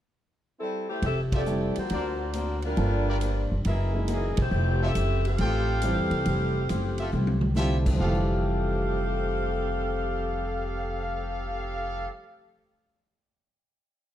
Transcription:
0.60 saxophone section G3 C4 E4 A4
0.89 saxophone section A3 E4 G4 C5
1.02 upright bass F1, steel-string acoustic guitar F3 A3 E4 G4, saxophone section C4 G4 A4 E5, ride
1.32 saxophone section C4 G4 A4 D5, trumpet section F4 G4 A4 E5, kick, ride
1.45 steel-string acoustic guitar F3 A3 E4 G4, grand piano G3 A3 C4 E4, hi-hat pedal
1.75 saxophone section A#3 F4 F#4 C5, muted upright bass stroke, ride
1.89 upright bass D2, steel-string acoustic guitar D3 A#3 C4 F#4, trumpet section D4 A#4 C5 D5, ride
2.33 steel-string acoustic guitar D3 A#3 C4 F#4, hi-hat pedal, ride
2.62 saxophone section G3 D4 F4 A#4, ride
2.76 upright bass G1, steel-string acoustic guitar G2 F3 A#3 D4, grand piano A3 A#3 D4 F4, ride
3.08 trumpet section F4 G4 A#4 D5
3.20 steel-string acoustic guitar G2 F3 A#3 D4, hi-hat pedal, ride
3.52 upright bass G1
3.65 upright bass F#1, steel-string acoustic guitar F#2 E3 A#3 D#4, trumpet section E4 G#4 A#4 E5, ride
3.94 grand piano G#3 A#3 D#4 E4
4.08 steel-string acoustic guitar F#2 E3 A#3 D#4, saxophone section E3 A#3 C#4 G#4, hi-hat pedal, ride
4.37 upright bass E1, kick, ride
4.41 saxophone section A3 E4 G4 C5
4.51 upright bass F1, steel-string acoustic guitar F3 A3 E4 G4
4.82 saxophone section C4 G4 A4 E5, trumpet section F4 G4 A4 E5
4.94 upright bass F#1, steel-string acoustic guitar F3 A3 E4 G4, hi-hat pedal, ride
5.25 saxophone section C4 G4 A4 F5, ride
5.38 upright bass A1, steel-string acoustic guitar F3 A3 E4 G4, trumpet section F4 G4 A4 G5, ride
5.82 grand piano E3 G3 A3 C4, steel-string acoustic guitar F3 A3 E4 G4, hi-hat pedal, ride
5.96 upright bass E2
6.11 upright bass C2, ride
6.25 upright bass F1, steel-string acoustic guitar F3 A3 E4 G4, ride
6.69 upright bass F#1, steel-string acoustic guitar F3 A3 E4 G4, hi-hat pedal, ride
6.98 trumpet section F4 G4 A4 E5, ride
7.12 upright bass C2, steel-string acoustic guitar F3 A3 E4 G4, high tom
7.27 high tom
7.41 mid tom
7.55 steel-string acoustic guitar F3 A3 E4 G4, grand piano G3 A3 C4 E4, trumpet section F4 G4 A4 E5, snare, hi-hat pedal
7.86 kick, crash
7.94 grand piano F2 F3, steel-string acoustic guitar F3
8.00 upright bass F1, grand piano G3 A3, steel-string acoustic guitar A3, saxophone section C4 G4 A4 F5, trumpet section G4 A4 F5
8.07 grand piano E3
8.15 steel-string acoustic guitar G4

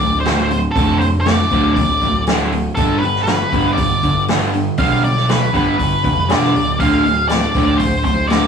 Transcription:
Already playing: lead electric guitar D5
0.00 picked electric bass D1, overdriven electric guitar D2 A2, kick
0.20 lead electric guitar C5
0.25 overdriven electric guitar D2 A2 D3, snare, open hi-hat
0.50 overdriven electric guitar D2 A2, open hi-hat
0.72 lead electric guitar A4, kick
0.76 picked electric bass F1, overdriven electric guitar D2 A2 D3, open hi-hat
0.98 overdriven electric guitar D2 A2, lead electric guitar C5, open hi-hat
1.21 lead electric guitar D5
1.25 overdriven electric guitar D2 A2, snare, open hi-hat
1.51 picked electric bass D1, overdriven electric guitar D2 A2 D3, kick, open hi-hat
1.74 picked electric bass D1, overdriven electric guitar D2, lead electric guitar D5, kick, open hi-hat
1.79 overdriven electric guitar A2
2.01 picked electric bass D1, overdriven electric guitar D2 A2, kick, open hi-hat
2.27 overdriven electric guitar D2 A2 D3, snare, open hi-hat
2.52 overdriven electric guitar D2 A2, open hi-hat
2.75 picked electric bass G1, overdriven electric guitar G2 D3 G3, lead electric guitar A4, kick, open hi-hat
2.98 lead electric guitar B4
3.03 overdriven electric guitar G2 D3, open hi-hat
3.15 snare
3.23 lead electric guitar B4, open hi-hat
3.27 overdriven electric guitar G2 D3, snare
3.52 picked electric bass G1, overdriven electric guitar G2 D3 G3, kick, open hi-hat
3.73 lead electric guitar D5
3.77 picked electric bass G1, overdriven electric guitar G2 D3, kick, open hi-hat
4.03 picked electric bass G1, overdriven electric guitar G2 D3, kick, open hi-hat
4.28 overdriven electric guitar G2 D3 G3, snare, open hi-hat
4.42 snare
4.54 overdriven electric guitar G2 D3, open hi-hat
4.78 picked electric bass B1, overdriven electric guitar G2 D3 G3, lead electric guitar F5, kick, open hi-hat
5.04 overdriven electric guitar G2 D3, lead electric guitar D5, open hi-hat
5.17 snare
5.29 overdriven electric guitar G2 D3, lead electric guitar B4, snare, open hi-hat
5.53 picked electric bass G1, overdriven electric guitar G2 D3 G3, lead electric guitar B4, kick, open hi-hat
5.78 picked electric bass G1, overdriven electric guitar G2 D3, kick, open hi-hat
6.04 picked electric bass F1, overdriven electric guitar G2 D3, kick, open hi-hat
6.29 picked electric bass E1, overdriven electric guitar G2 D3 G3, lead electric guitar D5, snare, open hi-hat
6.44 snare
6.55 picked electric bass D1, overdriven electric guitar G2 D3, open hi-hat
6.79 picked electric bass D1, overdriven electric guitar D2 A2 D3, lead electric guitar F5, kick, open hi-hat
7.05 overdriven electric guitar D2 A2, open hi-hat
7.29 overdriven electric guitar D2 A2, lead electric guitar D5, snare, open hi-hat
7.55 picked electric bass D1, overdriven electric guitar D2 A2 D3, kick, open hi-hat
7.77 picked electric bass D1, overdriven electric guitar D2 A2, lead electric guitar C5, kick, open hi-hat
8.04 picked electric bass D1, overdriven electric guitar D2 A2, lead electric guitar C5, kick, open hi-hat
8.28 overdriven electric guitar D2 A2 D3, lead electric guitar D5, snare, open hi-hat

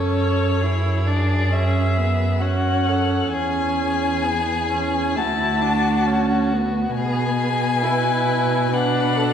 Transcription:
Already playing: cello F#2, viola C#4, violin A4 C#5
0.61 viola E4, violin G#4
1.07 viola D4, violin D5
1.52 viola C#4, violin E5
1.98 viola B3
2.39 viola C#4, violin F#4 F#5
2.87 violin A4
3.33 cello E2, viola C#4, violin G#4 G#5
4.24 viola B3
4.71 viola C#4
5.16 cello D2, viola E4, violin F#4 A5
5.62 viola D4
6.07 viola C#4
6.53 viola B3
6.94 cello B2, violin G#4 G#5
7.38 violin G#4
7.83 viola E4, violin B4
8.72 viola D4, violin B4 F#5
9.17 violin A4

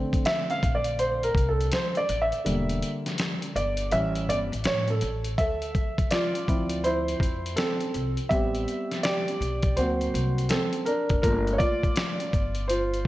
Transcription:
Already playing: grand piano D3 A3 C4
0.13 kick, closed hi-hat
0.25 grand piano E5, snare, closed hi-hat
0.50 grand piano F5, closed hi-hat
0.63 upright bass A#1, kick, closed hi-hat
0.75 grand piano D5
0.84 closed hi-hat
0.99 grand piano C5, closed hi-hat
1.23 grand piano A#4, closed hi-hat
1.35 upright bass C2, kick, closed hi-hat
1.49 grand piano A4
1.61 closed hi-hat
1.72 grand piano C5, snare, closed hi-hat
1.95 grand piano D5, closed hi-hat
2.09 upright bass A1, closed hi-hat
2.22 grand piano E5
2.32 closed hi-hat
2.45 upright bass E1, grand piano D3 G3 A#3, closed hi-hat
2.69 closed hi-hat
2.82 closed hi-hat
3.06 snare, closed hi-hat
3.18 snare, closed hi-hat
3.42 closed hi-hat
3.55 upright bass G1, grand piano D5, closed hi-hat
3.77 closed hi-hat
3.91 upright bass A1, grand piano E3 G3 C#4 E5, closed hi-hat
4.15 closed hi-hat
4.29 upright bass G1, grand piano D5, closed hi-hat
4.52 upright bass A1, closed hi-hat
4.64 upright bass A2, grand piano C#5, snare, closed hi-hat
4.88 grand piano A4, closed hi-hat
5.01 upright bass A1, closed hi-hat
5.24 closed hi-hat
5.38 upright bass D2, grand piano A4 E5, kick, closed hi-hat
5.62 closed hi-hat
5.75 kick, closed hi-hat
5.98 kick, closed hi-hat
6.11 grand piano F4 D5, snare, closed hi-hat
6.35 closed hi-hat
6.47 upright bass D2, grand piano F3 C4 E4, kick, closed hi-hat
6.69 closed hi-hat
6.84 grand piano E4 C5, closed hi-hat
7.08 closed hi-hat
7.20 upright bass F2, kick, closed hi-hat
7.46 closed hi-hat
7.56 grand piano C4 A4, snare, closed hi-hat
7.80 closed hi-hat
7.94 upright bass C2, closed hi-hat
8.17 closed hi-hat
8.29 upright bass A1, grand piano G3 B3 C4 G4 E5, kick, closed hi-hat
8.55 closed hi-hat
8.68 closed hi-hat
8.91 snare, closed hi-hat
9.03 grand piano G4 D5, snare, closed hi-hat
9.28 closed hi-hat
9.41 upright bass B1, closed hi-hat
9.62 kick, closed hi-hat
9.76 upright bass D2, grand piano F#3 A#3 C4 F#4 C5, closed hi-hat
10.01 closed hi-hat
10.14 upright bass C2, closed hi-hat
10.38 closed hi-hat
10.49 grand piano C4 A4, snare, closed hi-hat
10.73 closed hi-hat
10.85 grand piano D4 A#4, closed hi-hat
11.09 upright bass F#1, kick, closed hi-hat
11.22 upright bass G1, grand piano A3 A#3 D4 F4 A#4, kick, closed hi-hat
11.47 closed hi-hat
11.53 grand piano C#5
11.58 grand piano F4 D5, kick, closed hi-hat
11.83 kick, closed hi-hat
11.96 snare, closed hi-hat
12.20 closed hi-hat
12.33 upright bass G1, kick, closed hi-hat
12.55 closed hi-hat
12.68 grand piano F4 C5, closed hi-hat
12.94 closed hi-hat

